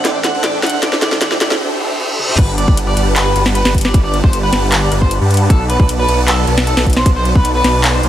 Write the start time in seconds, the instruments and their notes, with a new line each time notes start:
Already playing: riser
0.05 detuned saw bass A1, supersaw synth D4 A4 C5 E5 G5, clean electric guitar D5, snare, closed hi-hat
0.24 clean electric guitar F#5, snare, closed hi-hat
0.34 detuned saw bass A1, supersaw synth D4 A4 C5 E5 F#5
0.43 detuned saw bass A1, supersaw synth D4 A4 C5 E5 G5, clean electric guitar D5, snare, closed hi-hat
0.63 clean electric guitar F#5, snare, closed hi-hat
0.66 closed hi-hat
0.70 detuned saw bass A1, supersaw synth D4 A4 C5 E5 F#5, closed hi-hat
0.82 detuned saw bass A1, supersaw synth D4 A4 C5 E5 G5, clean electric guitar D5, snare, closed hi-hat
0.93 snare
1.02 detuned saw bass A1, supersaw synth D4 A4 C5 E5 G5, clean electric guitar D5, snare, closed hi-hat
1.12 snare
1.21 detuned saw bass A1, supersaw synth D4 A4 C5 E5 G5, clean electric guitar D5, snare, closed hi-hat
1.31 snare
1.41 detuned saw bass A1, supersaw synth D4 A4 C5 E5 G5, clean electric guitar D5, snare, closed hi-hat
1.51 snare
1.61 supersaw synth D4 A4 C5 E5 G5, reverse cymbal
1.80 supersaw synth D4 A4 C5 E5 G5
1.99 supersaw synth D4 A4 C5 E5 G5
2.19 supersaw synth D4 A4 C5 E5 G5, high tom
2.29 mid tom
2.38 detuned saw bass G1, supersaw synth G3, clean electric guitar B4, kick, closed hi-hat, crash
2.58 clean electric guitar D5, closed hi-hat
2.68 detuned saw bass G1, supersaw synth G3 G4 B4 F#5, kick
2.77 closed hi-hat
2.87 clean electric guitar D5
2.97 detuned saw bass G1, supersaw synth G3 G4 B4 F#5 A5, closed hi-hat
3.16 clean electric guitar B4, clap, closed hi-hat
3.36 detuned saw bass G1, supersaw synth G3 G4 B4 F#5 A5, closed hi-hat
3.46 snare
3.55 clean electric guitar B4, closed hi-hat
3.65 detuned saw bass G1, supersaw synth G3 G4 B4 F#5 A5, snare
3.75 kick, closed hi-hat
3.78 closed hi-hat
3.81 clean electric guitar D5, snare, closed hi-hat
3.94 detuned saw bass G1, supersaw synth G3 G4 B4 F#5 A5, kick, closed hi-hat
4.04 clean electric guitar D5
4.14 closed hi-hat
4.24 detuned saw bass G1, supersaw synth G3 G4 F#5, clean electric guitar C5, kick
4.33 closed hi-hat
4.43 clean electric guitar B4
4.53 detuned saw bass G1, supersaw synth G3 G4 B4 F#5 A5, snare, closed hi-hat
4.72 clap, closed hi-hat
4.82 clean electric guitar D5
4.92 detuned saw bass G1, supersaw synth G3 G4 B4 F#5 A5, closed hi-hat
5.01 clean electric guitar C5, kick
5.11 closed hi-hat
5.21 detuned saw bass G2, supersaw synth G3 G4 B4 F#5 A5
5.31 closed hi-hat
5.34 closed hi-hat
5.37 closed hi-hat
5.50 detuned saw bass B1, supersaw synth B3 B4 F#5 A5, clean electric guitar A4, kick, closed hi-hat
5.70 clean electric guitar B4, closed hi-hat
5.80 detuned saw bass B1, supersaw synth B3 D5, kick
5.89 closed hi-hat
5.99 clean electric guitar B4
6.08 detuned saw bass B1, supersaw synth B3 B4 D5 F#5 A5, closed hi-hat
6.28 clean electric guitar A4, clap, closed hi-hat
6.47 detuned saw bass B1, supersaw synth B3 B4 D5 F#5 A5, closed hi-hat
6.58 snare
6.67 clean electric guitar A4, closed hi-hat
6.77 detuned saw bass B1, supersaw synth B3 B4 D5 F#5 A5, snare
6.86 kick, closed hi-hat
6.90 closed hi-hat
6.93 clean electric guitar C5, snare, closed hi-hat
7.06 detuned saw bass B1, supersaw synth B3 B4 D5 F#5 A5, kick, closed hi-hat
7.16 clean electric guitar C5
7.25 closed hi-hat
7.35 detuned saw bass B1, supersaw synth B3 B4 D5 F#5, clean electric guitar B4, kick
7.45 closed hi-hat
7.55 clean electric guitar B4
7.64 detuned saw bass B1, supersaw synth B3 B4 D5 F#5 A5, snare, closed hi-hat
7.84 clap, closed hi-hat
7.94 clean electric guitar C5
8.03 detuned saw bass B1, supersaw synth B3 B4 D5 F#5 A5, closed hi-hat